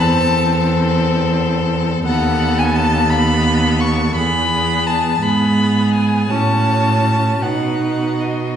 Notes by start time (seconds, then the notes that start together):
0.00 E2 C4 A4 A5
2.06 D#2 B3 A4 F#5
2.59 G#5
2.76 A5
3.10 B3 A4 B5
3.80 C#6
4.15 E2 B3 G#4 B5
4.87 A5
5.21 G#2 B3 G#4 B5
5.94 G#5
6.30 A2 C#4 F#4 A5
7.41 B2 D#4 F#4 F#5
8.20 D#5